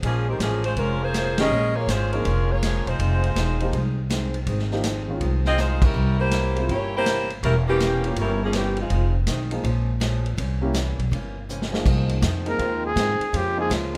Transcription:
0.02 upright bass A#1, steel-string acoustic guitar A#2 F3 G#3 C#4, saxophone section F3 A#3 C#4 G#4, kick, ride
0.28 saxophone section D#3 G#3 C4 G4
0.39 upright bass A1, steel-string acoustic guitar A#2 F3 G#3 C#4, saxophone section F3 A#3 C#4 G#4, snare, hi-hat pedal, ride
0.64 saxophone section G#3 C#4 F4 C5, ride
0.76 upright bass F1, steel-string acoustic guitar A#2 F3 G#3 C#4, saxophone section G#3 C#4 F4 A#4, kick, ride
1.02 saxophone section A#3 F4 G#4 C5
1.14 steel-string acoustic guitar A#2 F3 G#3 C#4, snare, hi-hat pedal, ride
1.38 grand piano D#3 G#3 C#4 G4, saxophone section C#4 G#4 A#4 D#5, snare, ride
1.50 upright bass A#1, steel-string acoustic guitar A#2 F3 G#3 C#4
1.75 saxophone section A#3 F4 G#4 C#5
1.87 upright bass G#1, steel-string acoustic guitar A#2 F3 G#3 C#4, saxophone section G#3 C#4 F4 C5, snare, hi-hat pedal, ride
2.12 grand piano F3 A#3 D#4 G#4, saxophone section G#3 C#4 F4 A#4, ride
2.25 upright bass F1, steel-string acoustic guitar A#2 F3 G#3 C#4, kick, ride
2.51 saxophone section A#3 F4 G#4 C#5
2.62 steel-string acoustic guitar A#2 F3 G#3 C#4, snare, hi-hat pedal, ride
2.86 upright bass E1, saxophone section G#3 D#4 F4 C5, ride
2.99 upright bass F1, steel-string acoustic guitar F2 D#3 G#3 C4, kick, ride
3.23 ride
3.36 upright bass E1, steel-string acoustic guitar F2 D#3 G#3 C4, snare, hi-hat pedal, ride
3.60 grand piano F3 A#3 D#4 G4, ride
3.73 upright bass C2, steel-string acoustic guitar F2 D#3 G#3 C4, kick, ride
4.10 steel-string acoustic guitar F2 D#3 G#3 C4, snare, hi-hat pedal, ride
4.34 ride
4.47 upright bass G#1, steel-string acoustic guitar F2 D#3 G#3 C4, kick, ride
4.59 snare
4.71 grand piano F3 A#3 D#4 G4, snare
4.83 steel-string acoustic guitar F2 D#3 G#3 C4, snare, hi-hat pedal, ride
5.08 grand piano D#3 G#3 C#4 F4
5.21 upright bass C2, steel-string acoustic guitar F2 D#3 G#3 C4, kick, ride
5.45 saxophone section C4 F4 G#4 D#5, snare
5.58 steel-string acoustic guitar F2 D#3 G#3 C4, saxophone section G#3 D#4 F4 C5, snare, hi-hat pedal
5.82 saxophone section G3 C#4 E4 A#4, kick, crash
5.94 upright bass C2, steel-string acoustic guitar C3 E3 A#3 C#4
6.19 saxophone section A#3 E4 G4 C5
6.31 steel-string acoustic guitar C3 E3 A#3 C#4, snare, hi-hat pedal, ride
6.56 grand piano G#3 C4 E4 F4, ride
6.69 upright bass G1, steel-string acoustic guitar C3 E3 A#3 C#4, saxophone section A#3 E4 G4 C#5, kick, ride
6.96 saxophone section A#3 E4 G4 C5
7.05 steel-string acoustic guitar C3 E3 A#3 C#4, snare, hi-hat pedal, ride
7.30 ride
7.43 upright bass E1, steel-string acoustic guitar C3 E3 A#3 C#4, saxophone section G3 C#4 E4 A#4, kick, ride
7.67 saxophone section E3 A#3 C#4 G4
7.80 steel-string acoustic guitar C3 E3 A#3 C#4, snare, hi-hat pedal, ride
8.03 grand piano A#3 C#4 F4 G4, ride
8.16 upright bass G1, steel-string acoustic guitar C3 E3 A#3 C#4, saxophone section G3 C#4 E4, kick, ride
8.20 saxophone section A#4
8.44 saxophone section F3 A#3 C#4 G#4
8.53 steel-string acoustic guitar C3 E3 A#3 C#4, saxophone section E3 A#3 C#4 G4, snare, hi-hat pedal, ride
8.77 saxophone section G#3 D#4 F4, ride
8.81 saxophone section C4
8.90 upright bass F1, steel-string acoustic guitar F2 D#3 G#3 C4, kick, ride
9.27 upright bass B1, steel-string acoustic guitar F2 D#3 G#3 C4, snare, hi-hat pedal, ride
9.51 grand piano F3 A#3 D#4 G#4, ride
9.64 upright bass A#1, steel-string acoustic guitar A#2 F3 G#3 C#4, kick, ride
10.00 steel-string acoustic guitar A#2 F3 G#3 C#4, snare, hi-hat pedal, ride
10.26 ride
10.37 upright bass C2, steel-string acoustic guitar C3 E3 A#3 C#4, kick, ride
10.61 grand piano A#3 C#4 E4 G4
10.74 steel-string acoustic guitar C3 E3 A#3 C#4, snare, hi-hat pedal, ride
10.99 upright bass B1, ride
11.11 upright bass G1, steel-string acoustic guitar C3 E3 A#3 C#4, kick, ride
11.49 steel-string acoustic guitar C3 E3 A#3 C#4, hi-hat pedal
11.62 snare
11.71 grand piano F3 A#3 D#4 G#4, snare
11.85 upright bass C2, steel-string acoustic guitar F2 D#3 G#3 C4, kick, crash
12.09 ride
12.22 steel-string acoustic guitar F2 D#3 G#3 C4, upright bass F2, kick, snare, hi-hat pedal, ride
12.45 grand piano F3 A#3 D#4 G#4, trumpet A#4, ride
12.58 upright bass D#2, steel-string acoustic guitar F2 D#3 G#3 C4, trombone section D#3 G#3 C4 F4, kick, ride
12.85 trumpet G#4
12.96 steel-string acoustic guitar F2 D#3 G#3 C4, upright bass G#2, trombone section D#3 G#3 C4 F4, kick, snare, hi-hat pedal, ride
13.19 muted upright bass stroke, ride
13.32 upright bass F2, steel-string acoustic guitar A#2 F3 G#3 C#4, trombone section C#3 G#3 A#3 F4, kick, ride
13.37 trumpet G4
13.57 grand piano F3 A#3 D#4 G#4, trumpet G#4
13.69 upright bass C#2, steel-string acoustic guitar A#2 F3 G#3 C#4, kick, snare, hi-hat pedal, ride
13.93 grand piano F3 A#3 D#4 G#4

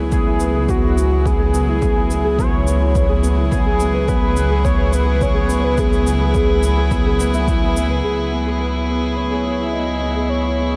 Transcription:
Already playing: detuned saw bass C#2, string quartet F#3 B3 E4 G#4, felt piano B3 G#4, soft synth lead G#4
0.00 felt piano E4
0.12 felt piano B3, soft synth lead G#4, kick, shaker
0.27 felt piano E4
0.40 felt piano B3, shaker
0.55 felt piano G#4
0.68 felt piano B3, soft synth lead F#4, kick, shaker
0.83 felt piano E4
0.97 felt piano B3, shaker
1.11 felt piano E4
1.26 felt piano B3, soft synth lead G#4, kick, shaker
1.40 felt piano G#4
1.54 felt piano B3, shaker
1.68 felt piano E4
1.82 felt piano B3, kick, shaker
1.97 felt piano E4
2.10 felt piano B3, shaker
2.25 felt piano G#4
2.39 felt piano B3, soft synth lead C#5, kick, shaker
2.53 felt piano E4
2.67 felt piano B3, shaker
2.81 felt piano E4
2.95 felt piano B3, kick, shaker
3.09 felt piano G#4
3.24 felt piano B3, shaker
3.37 felt piano E4
3.51 detuned saw bass C#2, felt piano B3, soft synth lead G#4, kick, shaker
3.66 felt piano G#4
3.80 felt piano B3, shaker
3.94 felt piano B4
4.08 felt piano B3, soft synth lead B4, kick, shaker
4.22 felt piano G#4
4.36 felt piano B3, shaker
4.50 felt piano G#4
4.64 felt piano B3, soft synth lead C#5, kick, shaker
4.78 felt piano B4
4.93 felt piano B3, soft synth lead B4, shaker
5.06 felt piano G#4
5.21 felt piano B3, soft synth lead C#5, kick, shaker
5.34 felt piano G#4
5.49 felt piano B3, shaker
5.63 felt piano B4, soft synth lead B4
5.77 felt piano B3, soft synth lead G#4, kick, shaker
5.92 felt piano G#4, shaker
6.06 felt piano B3, shaker
6.20 felt piano G#4
6.34 felt piano B3, kick, shaker
6.49 felt piano B4
6.63 felt piano B3, shaker
6.78 felt piano G#4
6.91 felt piano B3, kick, shaker
7.06 felt piano G#4
7.20 felt piano B3, shaker
7.34 felt piano E5, shaker
7.48 felt piano E4, kick, shaker
7.63 felt piano B3
7.77 felt piano B3, shaker
7.90 felt piano B4
8.04 detuned saw bass C#2, felt piano B3, soft synth lead G#4
8.19 felt piano E4
8.32 felt piano B3
8.47 felt piano G#4
8.60 felt piano B3, soft synth lead B4
8.75 felt piano E4
8.89 felt piano B3
9.03 felt piano E4
9.16 felt piano B3, soft synth lead C#5
9.31 felt piano G#4
9.45 felt piano B3
9.59 felt piano E4
9.73 felt piano B3, soft synth lead D#5
9.87 felt piano E4
10.02 felt piano B3
10.16 felt piano G#4
10.29 felt piano B3, soft synth lead C#5
10.45 felt piano E4
10.59 felt piano B3
10.73 felt piano E4

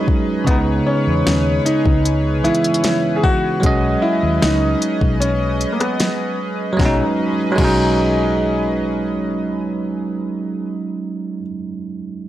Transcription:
Already playing: tine electric piano F#3 G#3 C#4 D#4, analog synth pad C#4 G#4 B4 D#5
0.08 kick
0.44 fingered electric bass C#2, tine electric piano C#3 G#3, grand piano B3, analog synth pad C#4 C#5, kick, closed hi-hat
0.49 tine electric piano B3 D#4
0.87 grand piano C#4
1.07 fingered electric bass E2
1.27 fingered electric bass D#2, synth pluck C#4, snare, closed hi-hat
1.66 grand piano D#4, closed hi-hat
1.85 fingered electric bass C#2, kick
2.05 closed hi-hat
2.44 tine electric piano E3 G#3 B3 E4, grand piano E4, closed hi-hat
2.55 closed hi-hat
2.64 closed hi-hat
2.74 closed hi-hat
2.84 snare, closed hi-hat
3.16 grand piano G#4
3.23 grand piano F#4, kick
3.60 fingered electric bass B1, tine electric piano F#3 G#3, analog synth pad D#5, kick, closed hi-hat
3.64 tine electric piano C#4 D#5
4.02 grand piano E4
4.23 fingered electric bass D#2
4.42 fingered electric bass C#2, grand piano D#4, snare, closed hi-hat
4.82 closed hi-hat
5.01 fingered electric bass B1, kick
5.20 grand piano C#4, closed hi-hat
5.61 closed hi-hat
5.72 grand piano A#3
5.80 grand piano B3, cross-stick, closed hi-hat
6.00 snare, closed hi-hat
6.73 tine electric piano F#3
6.77 fingered electric bass B1, grand piano F#3, tine electric piano G#3, synth pluck B3, analog synth pad C#4 G#4 B4 D#5, kick, snare
6.81 tine electric piano C#4
6.85 tine electric piano D#4
7.52 tine electric piano F#3
7.56 fingered electric bass B1, grand piano F#3, tine electric piano G#3, kick, crash
7.60 tine electric piano C#4
7.64 tine electric piano D#4

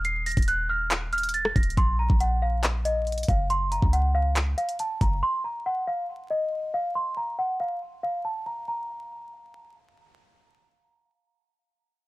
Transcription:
Already playing: 808-style bass D#1
0.05 celesta C7, closed hi-hat
0.26 celesta A#6, closed hi-hat, open hi-hat
0.32 closed hi-hat
0.37 808-style bass D#1, kick, closed hi-hat
0.42 closed hi-hat
0.48 celesta F#6, closed hi-hat
0.70 celesta F6
0.91 clap, closed hi-hat
1.13 celesta F6, closed hi-hat
1.18 closed hi-hat
1.23 closed hi-hat
1.29 closed hi-hat
1.34 celesta A6, closed hi-hat
1.45 cross-stick
1.56 808-style bass D#1, celesta A#6, kick, closed hi-hat
1.63 closed hi-hat
1.70 closed hi-hat
1.77 808-style bass A#1, celesta C6, kick, closed hi-hat
1.99 celesta A#5
2.10 808-style bass A#1, kick
2.20 celesta F#5, closed hi-hat
2.42 celesta F5
2.63 clap, closed hi-hat
2.85 celesta D#5, closed hi-hat
3.07 closed hi-hat
3.12 closed hi-hat
3.18 closed hi-hat
3.23 closed hi-hat
3.28 808-style bass F#1, celesta F5, kick, closed hi-hat
3.50 celesta C6, closed hi-hat
3.72 celesta A#5, closed hi-hat
3.82 808-style bass C#2, kick
3.93 celesta F#5, closed hi-hat
4.15 celesta F5
4.36 clap, closed hi-hat
4.58 celesta F5, closed hi-hat
4.69 closed hi-hat
4.79 celesta A5, closed hi-hat
5.01 808-style bass F#1, celesta A#5, kick, closed hi-hat
5.23 celesta C6
5.44 celesta A#5
5.66 celesta F#5
5.87 celesta F5
6.30 celesta D#5
6.74 celesta F5
6.95 celesta C6
7.17 celesta A#5
7.39 celesta F#5
7.60 celesta F5
8.03 celesta F5
8.25 celesta A5
8.46 celesta A#5
8.68 celesta A#5

